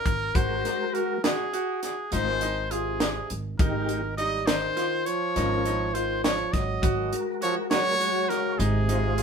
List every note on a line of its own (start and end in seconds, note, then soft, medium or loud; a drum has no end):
0.00 0.37 A#4 loud
0.06 0.32 G#1 medium
0.06 kick medium
0.06 closed hi-hat medium
0.34 0.62 G#1 medium
0.34 1.18 G#3 medium
0.34 1.18 F#4 medium
0.34 0.73 F#4 medium
0.34 1.18 A#4 medium
0.34 0.96 C5 medium
0.34 kick medium
0.34 closed hi-hat medium
0.65 snare soft
0.65 closed hi-hat medium
0.93 1.13 F#4 medium
0.93 1.23 A#4 medium
0.93 closed hi-hat soft
1.23 1.43 F#4 medium
1.23 1.79 G#4 medium
1.23 snare loud
1.23 closed hi-hat medium
1.53 1.91 F#4 medium
1.53 closed hi-hat medium
1.83 2.10 G#4 medium
1.83 snare soft
1.83 closed hi-hat medium
2.11 3.18 G#1 medium
2.11 2.47 G#3 medium
2.11 2.31 D#4 medium
2.11 2.48 F4 medium
2.11 2.48 C5 medium
2.11 2.72 C5 medium
2.11 closed hi-hat medium
2.41 2.61 D#4 medium
2.41 closed hi-hat medium
2.71 3.32 C3 medium
2.71 3.08 F4 medium
2.71 3.32 G#4 medium
2.71 closed hi-hat medium
3.00 snare medium
3.00 closed hi-hat medium
3.30 3.57 G#1 medium
3.30 closed hi-hat medium
3.58 4.65 G#1 medium
3.58 4.14 D#3 medium
3.58 4.01 G#3 medium
3.58 3.97 D#4 medium
3.58 4.01 D#4 medium
3.58 4.01 G4 medium
3.58 4.14 A#4 medium
3.58 kick medium
3.58 closed hi-hat medium
3.89 closed hi-hat medium
4.17 4.49 G3 medium
4.17 4.37 D#4 medium
4.17 4.48 D#5 loud
4.17 closed hi-hat medium
4.46 5.08 D#3 medium
4.46 4.66 D#4 medium
4.46 5.07 C5 medium
4.46 snare loud
4.46 closed hi-hat medium
4.76 5.14 F4 medium
4.76 snare soft
4.76 closed hi-hat medium
5.06 5.97 F3 medium
5.06 5.96 C#5 medium
5.06 closed hi-hat soft
5.36 6.42 G#1 medium
5.36 5.71 C#4 medium
5.36 5.55 D#4 medium
5.36 5.72 F4 medium
5.36 5.72 A#4 medium
5.36 snare soft
5.36 closed hi-hat medium
5.65 5.84 D#4 medium
5.65 closed hi-hat medium
5.94 6.24 D#3 medium
5.94 6.32 F4 medium
5.94 6.23 C5 medium
5.94 closed hi-hat medium
6.24 6.56 F3 medium
6.24 6.54 C#5 medium
6.24 snare loud
6.24 closed hi-hat medium
6.53 6.80 G#1 medium
6.53 7.13 F#3 medium
6.53 7.12 D#5 medium
6.53 kick medium
6.53 snare soft
6.53 closed hi-hat medium
6.82 7.10 G#1 medium
6.82 7.20 F#4 medium
6.82 kick medium
6.82 closed hi-hat medium
7.12 7.94 G#3 medium
7.12 7.95 F#4 soft
7.12 7.95 A#4 medium
7.12 closed hi-hat medium
7.41 7.56 F3 medium
7.41 7.60 F#4 medium
7.41 7.56 C#5 medium
7.41 closed hi-hat medium
7.71 8.33 F#3 medium
7.71 7.90 F#4 medium
7.71 8.30 C#5 loud
7.71 snare medium
7.71 closed hi-hat medium
8.00 8.59 G#3 medium
8.00 8.38 F#4 medium
8.00 8.59 F#4 medium
8.00 8.60 C#5 medium
8.00 closed hi-hat medium
8.29 8.63 C#3 medium
8.29 8.60 A#4 medium
8.29 snare soft
8.29 closed hi-hat medium
8.58 9.23 G#1 loud
8.58 9.23 C3 medium
8.58 8.78 D#4 medium
8.58 9.23 G#4 medium
8.58 closed hi-hat medium
8.88 9.23 G#3 medium
8.88 9.07 D#4 medium
8.88 9.23 F4 medium
8.88 9.23 C5 medium
8.88 closed hi-hat medium
9.18 9.23 F4 medium
9.18 closed hi-hat medium